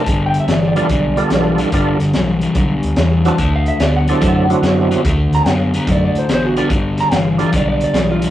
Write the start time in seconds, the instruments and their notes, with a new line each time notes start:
Already playing: clean electric guitar A5
0.06 fingered electric bass G1, overdriven electric guitar G2 D3, kick, closed hi-hat
0.26 clean electric guitar G5
0.34 closed hi-hat
0.40 clean electric guitar E5
0.48 fingered electric bass G1, overdriven electric guitar G2 E3, snare, closed hi-hat
0.52 clean electric guitar D5
0.68 clean electric guitar D5
0.76 overdriven electric guitar G2 E3, tonewheel organ G3 B3 D4 F4 A4, closed hi-hat
0.89 fingered electric bass B1, overdriven electric guitar G2 D3, kick, closed hi-hat
1.17 tonewheel organ G3 B3 D4 F4 A4, closed hi-hat
1.30 fingered electric bass B1, overdriven electric guitar G2 E3, snare, closed hi-hat
1.58 overdriven electric guitar G2 E3, closed hi-hat
1.72 fingered electric bass G1, overdriven electric guitar G2 D3, tonewheel organ G3 B3 D4 F4 A4, kick, closed hi-hat
2.00 fingered electric bass G1, snare, closed hi-hat
2.13 fingered electric bass B1, overdriven electric guitar G2 E3, snare, closed hi-hat
2.41 overdriven electric guitar G2 E3, closed hi-hat
2.55 fingered electric bass B1, overdriven electric guitar G2 D3, kick, closed hi-hat
2.83 fingered electric bass D2, closed hi-hat
2.96 fingered electric bass E2, overdriven electric guitar G2 E3, snare, closed hi-hat
3.25 overdriven electric guitar G2 E3, tonewheel organ F#3 C4 D4 E4 F#4, clean electric guitar A5, closed hi-hat
3.38 fingered electric bass D2, overdriven electric guitar D3 A3, kick, closed hi-hat
3.56 clean electric guitar F5
3.66 clean electric guitar E5, closed hi-hat
3.79 fingered electric bass D2, overdriven electric guitar D3 B3, clean electric guitar D5, snare, closed hi-hat
3.96 clean electric guitar F#5
4.08 overdriven electric guitar D3 B3, tonewheel organ F#3 C4 D4 E4 A4, closed hi-hat
4.21 fingered electric bass F#2, overdriven electric guitar D3 A3, kick, closed hi-hat
4.50 tonewheel organ F#3 C4 D4 E4 F#4, closed hi-hat
4.62 fingered electric bass F#2, overdriven electric guitar D3 B3, snare, closed hi-hat
4.91 overdriven electric guitar D3 B3, closed hi-hat
5.05 fingered electric bass D2, overdriven electric guitar D3 A3, kick, closed hi-hat
5.31 fingered electric bass D2, clean electric guitar A#5, snare, closed hi-hat
5.45 fingered electric bass F#2, overdriven electric guitar D3 B3, clean electric guitar F5, snare, closed hi-hat
5.74 overdriven electric guitar D3 B3, closed hi-hat
5.87 fingered electric bass F#2, overdriven electric guitar D3 A3, kick, closed hi-hat
5.92 clean electric guitar D5
6.05 clean electric guitar D5
6.15 fingered electric bass A2, clean electric guitar C5, closed hi-hat
6.29 fingered electric bass A1, overdriven electric guitar D3 B3, snare, closed hi-hat
6.34 clean electric guitar C5
6.46 clean electric guitar F#4
6.57 overdriven electric guitar D3 B3, tonewheel organ G3 B3 D4 F4 A4, closed hi-hat
6.70 fingered electric bass G1, overdriven electric guitar G2 D3, kick, closed hi-hat
6.98 clean electric guitar A#5, snare, closed hi-hat
7.11 fingered electric bass G1, overdriven electric guitar G2 E3, clean electric guitar F5, snare, closed hi-hat
7.38 overdriven electric guitar G2 E3, tonewheel organ G3 B3 D4 F4 A4, closed hi-hat
7.52 fingered electric bass B1, overdriven electric guitar G2 D3, kick, closed hi-hat
7.56 clean electric guitar D5
7.68 clean electric guitar D5
7.81 clean electric guitar D5, closed hi-hat
7.93 fingered electric bass B1, overdriven electric guitar G2 E3, snare, closed hi-hat
7.98 clean electric guitar D5
8.11 clean electric guitar F4
8.21 overdriven electric guitar G2 E3, closed hi-hat